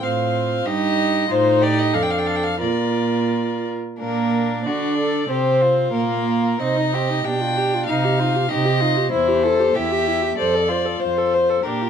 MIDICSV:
0, 0, Header, 1, 5, 480
1, 0, Start_track
1, 0, Tempo, 636267
1, 22, Time_signature, 2, 2, 24, 8
1, 1462, Tempo, 687285
1, 2902, Tempo, 649351
1, 4822, Tempo, 630915
1, 8854, End_track
2, 0, Start_track
2, 0, Title_t, "Violin"
2, 0, Program_c, 0, 40
2, 20, Note_on_c, 0, 77, 77
2, 500, Note_on_c, 0, 75, 100
2, 512, Note_off_c, 0, 77, 0
2, 990, Note_on_c, 0, 72, 93
2, 1001, Note_off_c, 0, 75, 0
2, 1228, Note_on_c, 0, 74, 100
2, 1240, Note_off_c, 0, 72, 0
2, 1352, Note_on_c, 0, 75, 90
2, 1363, Note_off_c, 0, 74, 0
2, 1463, Note_on_c, 0, 77, 89
2, 1474, Note_off_c, 0, 75, 0
2, 1526, Note_on_c, 0, 79, 91
2, 1536, Note_off_c, 0, 77, 0
2, 1579, Note_on_c, 0, 77, 82
2, 1590, Note_off_c, 0, 79, 0
2, 1633, Note_on_c, 0, 79, 86
2, 1644, Note_off_c, 0, 77, 0
2, 1691, Note_on_c, 0, 77, 75
2, 1701, Note_off_c, 0, 79, 0
2, 1755, Note_on_c, 0, 79, 89
2, 1766, Note_off_c, 0, 77, 0
2, 1807, Note_on_c, 0, 77, 92
2, 1817, Note_off_c, 0, 79, 0
2, 1929, Note_off_c, 0, 77, 0
2, 1933, Note_on_c, 0, 74, 76
2, 2650, Note_off_c, 0, 74, 0
2, 2895, Note_on_c, 0, 70, 72
2, 3351, Note_off_c, 0, 70, 0
2, 3381, Note_on_c, 0, 74, 81
2, 3859, Note_on_c, 0, 72, 77
2, 3870, Note_off_c, 0, 74, 0
2, 4320, Note_off_c, 0, 72, 0
2, 4325, Note_on_c, 0, 70, 79
2, 4822, Note_on_c, 0, 75, 82
2, 4833, Note_off_c, 0, 70, 0
2, 5311, Note_on_c, 0, 79, 100
2, 5323, Note_off_c, 0, 75, 0
2, 5781, Note_off_c, 0, 79, 0
2, 5785, Note_on_c, 0, 77, 91
2, 6266, Note_on_c, 0, 75, 96
2, 6277, Note_off_c, 0, 77, 0
2, 6734, Note_off_c, 0, 75, 0
2, 6739, Note_on_c, 0, 72, 83
2, 7213, Note_on_c, 0, 76, 99
2, 7225, Note_off_c, 0, 72, 0
2, 7691, Note_off_c, 0, 76, 0
2, 7699, Note_on_c, 0, 74, 86
2, 8170, Note_on_c, 0, 72, 82
2, 8182, Note_off_c, 0, 74, 0
2, 8649, Note_on_c, 0, 70, 68
2, 8660, Note_off_c, 0, 72, 0
2, 8854, Note_off_c, 0, 70, 0
2, 8854, End_track
3, 0, Start_track
3, 0, Title_t, "Violin"
3, 0, Program_c, 1, 40
3, 23, Note_on_c, 1, 65, 63
3, 494, Note_on_c, 1, 67, 68
3, 505, Note_off_c, 1, 65, 0
3, 968, Note_off_c, 1, 67, 0
3, 972, Note_on_c, 1, 65, 71
3, 1220, Note_on_c, 1, 67, 75
3, 1231, Note_off_c, 1, 65, 0
3, 1459, Note_on_c, 1, 69, 68
3, 1470, Note_off_c, 1, 67, 0
3, 1926, Note_off_c, 1, 69, 0
3, 1931, Note_on_c, 1, 70, 63
3, 2739, Note_off_c, 1, 70, 0
3, 2899, Note_on_c, 1, 62, 64
3, 3392, Note_on_c, 1, 66, 63
3, 3403, Note_off_c, 1, 62, 0
3, 3621, Note_off_c, 1, 66, 0
3, 3626, Note_on_c, 1, 69, 67
3, 3858, Note_off_c, 1, 69, 0
3, 3865, Note_on_c, 1, 67, 64
3, 4099, Note_on_c, 1, 65, 68
3, 4110, Note_off_c, 1, 67, 0
3, 4825, Note_off_c, 1, 65, 0
3, 4833, Note_on_c, 1, 63, 70
3, 5084, Note_on_c, 1, 67, 67
3, 5096, Note_off_c, 1, 63, 0
3, 5321, Note_off_c, 1, 67, 0
3, 5331, Note_on_c, 1, 62, 63
3, 5807, Note_on_c, 1, 63, 71
3, 5818, Note_off_c, 1, 62, 0
3, 6037, Note_on_c, 1, 65, 68
3, 6049, Note_off_c, 1, 63, 0
3, 6268, Note_off_c, 1, 65, 0
3, 6278, Note_on_c, 1, 67, 70
3, 6504, Note_on_c, 1, 65, 78
3, 6515, Note_off_c, 1, 67, 0
3, 6738, Note_off_c, 1, 65, 0
3, 6743, Note_on_c, 1, 64, 75
3, 6982, Note_on_c, 1, 69, 77
3, 6993, Note_off_c, 1, 64, 0
3, 7223, Note_on_c, 1, 67, 63
3, 7234, Note_off_c, 1, 69, 0
3, 7688, Note_off_c, 1, 67, 0
3, 7693, Note_on_c, 1, 69, 75
3, 7927, Note_on_c, 1, 65, 66
3, 7939, Note_off_c, 1, 69, 0
3, 8656, Note_off_c, 1, 65, 0
3, 8662, Note_on_c, 1, 67, 64
3, 8854, Note_off_c, 1, 67, 0
3, 8854, End_track
4, 0, Start_track
4, 0, Title_t, "Viola"
4, 0, Program_c, 2, 41
4, 26, Note_on_c, 2, 60, 55
4, 502, Note_on_c, 2, 63, 61
4, 513, Note_off_c, 2, 60, 0
4, 974, Note_off_c, 2, 63, 0
4, 979, Note_on_c, 2, 63, 71
4, 1469, Note_on_c, 2, 62, 73
4, 1480, Note_off_c, 2, 63, 0
4, 1933, Note_off_c, 2, 62, 0
4, 1937, Note_on_c, 2, 65, 58
4, 2743, Note_off_c, 2, 65, 0
4, 2905, Note_on_c, 2, 58, 62
4, 3356, Note_off_c, 2, 58, 0
4, 3382, Note_on_c, 2, 62, 69
4, 3850, Note_off_c, 2, 62, 0
4, 3859, Note_on_c, 2, 60, 67
4, 4322, Note_off_c, 2, 60, 0
4, 4332, Note_on_c, 2, 58, 67
4, 4814, Note_off_c, 2, 58, 0
4, 4830, Note_on_c, 2, 60, 51
4, 4953, Note_on_c, 2, 63, 48
4, 4964, Note_off_c, 2, 60, 0
4, 5075, Note_on_c, 2, 60, 54
4, 5086, Note_off_c, 2, 63, 0
4, 5198, Note_on_c, 2, 63, 49
4, 5210, Note_off_c, 2, 60, 0
4, 5317, Note_off_c, 2, 63, 0
4, 5322, Note_on_c, 2, 67, 50
4, 5438, Note_on_c, 2, 65, 52
4, 5449, Note_off_c, 2, 67, 0
4, 5561, Note_on_c, 2, 67, 58
4, 5573, Note_off_c, 2, 65, 0
4, 5690, Note_on_c, 2, 65, 55
4, 5701, Note_off_c, 2, 67, 0
4, 5794, Note_off_c, 2, 65, 0
4, 5799, Note_on_c, 2, 63, 59
4, 5922, Note_on_c, 2, 67, 52
4, 5934, Note_off_c, 2, 63, 0
4, 6036, Note_on_c, 2, 63, 55
4, 6048, Note_off_c, 2, 67, 0
4, 6158, Note_on_c, 2, 67, 52
4, 6170, Note_off_c, 2, 63, 0
4, 6262, Note_off_c, 2, 67, 0
4, 6267, Note_on_c, 2, 63, 57
4, 6384, Note_on_c, 2, 67, 55
4, 6395, Note_off_c, 2, 63, 0
4, 6505, Note_on_c, 2, 63, 58
4, 6517, Note_off_c, 2, 67, 0
4, 6623, Note_on_c, 2, 67, 57
4, 6635, Note_off_c, 2, 63, 0
4, 6739, Note_off_c, 2, 67, 0
4, 6743, Note_on_c, 2, 64, 55
4, 6861, Note_on_c, 2, 67, 53
4, 6873, Note_off_c, 2, 64, 0
4, 6981, Note_on_c, 2, 64, 56
4, 6993, Note_off_c, 2, 67, 0
4, 7102, Note_on_c, 2, 67, 50
4, 7113, Note_off_c, 2, 64, 0
4, 7219, Note_off_c, 2, 67, 0
4, 7226, Note_on_c, 2, 64, 56
4, 7345, Note_on_c, 2, 67, 52
4, 7357, Note_off_c, 2, 64, 0
4, 7461, Note_on_c, 2, 64, 53
4, 7473, Note_off_c, 2, 67, 0
4, 7579, Note_on_c, 2, 67, 55
4, 7591, Note_off_c, 2, 64, 0
4, 7696, Note_off_c, 2, 67, 0
4, 7708, Note_on_c, 2, 72, 51
4, 7826, Note_on_c, 2, 69, 51
4, 7837, Note_off_c, 2, 72, 0
4, 7944, Note_on_c, 2, 72, 52
4, 7955, Note_off_c, 2, 69, 0
4, 8060, Note_on_c, 2, 69, 46
4, 8071, Note_off_c, 2, 72, 0
4, 8176, Note_off_c, 2, 69, 0
4, 8181, Note_on_c, 2, 72, 49
4, 8306, Note_on_c, 2, 69, 47
4, 8318, Note_off_c, 2, 72, 0
4, 8430, Note_on_c, 2, 72, 48
4, 8441, Note_off_c, 2, 69, 0
4, 8551, Note_on_c, 2, 69, 48
4, 8563, Note_off_c, 2, 72, 0
4, 8664, Note_off_c, 2, 69, 0
4, 8669, Note_on_c, 2, 62, 48
4, 8793, Note_on_c, 2, 65, 42
4, 8804, Note_off_c, 2, 62, 0
4, 8854, Note_off_c, 2, 65, 0
4, 8854, End_track
5, 0, Start_track
5, 0, Title_t, "Cello"
5, 0, Program_c, 3, 42
5, 27, Note_on_c, 3, 45, 69
5, 495, Note_off_c, 3, 45, 0
5, 501, Note_on_c, 3, 43, 68
5, 969, Note_off_c, 3, 43, 0
5, 983, Note_on_c, 3, 45, 79
5, 1462, Note_on_c, 3, 41, 71
5, 1472, Note_off_c, 3, 45, 0
5, 1933, Note_on_c, 3, 46, 66
5, 1944, Note_off_c, 3, 41, 0
5, 2757, Note_off_c, 3, 46, 0
5, 2903, Note_on_c, 3, 46, 65
5, 3387, Note_on_c, 3, 50, 71
5, 3398, Note_off_c, 3, 46, 0
5, 3858, Note_off_c, 3, 50, 0
5, 3862, Note_on_c, 3, 48, 65
5, 4324, Note_off_c, 3, 48, 0
5, 4336, Note_on_c, 3, 46, 68
5, 4816, Note_off_c, 3, 46, 0
5, 4831, Note_on_c, 3, 48, 67
5, 5261, Note_off_c, 3, 48, 0
5, 5319, Note_on_c, 3, 47, 64
5, 5740, Note_off_c, 3, 47, 0
5, 5803, Note_on_c, 3, 48, 69
5, 6214, Note_off_c, 3, 48, 0
5, 6277, Note_on_c, 3, 48, 73
5, 6689, Note_off_c, 3, 48, 0
5, 6748, Note_on_c, 3, 40, 76
5, 7167, Note_off_c, 3, 40, 0
5, 7227, Note_on_c, 3, 40, 66
5, 7642, Note_off_c, 3, 40, 0
5, 7701, Note_on_c, 3, 41, 68
5, 8118, Note_off_c, 3, 41, 0
5, 8177, Note_on_c, 3, 41, 55
5, 8604, Note_off_c, 3, 41, 0
5, 8663, Note_on_c, 3, 46, 58
5, 8854, Note_off_c, 3, 46, 0
5, 8854, End_track
0, 0, End_of_file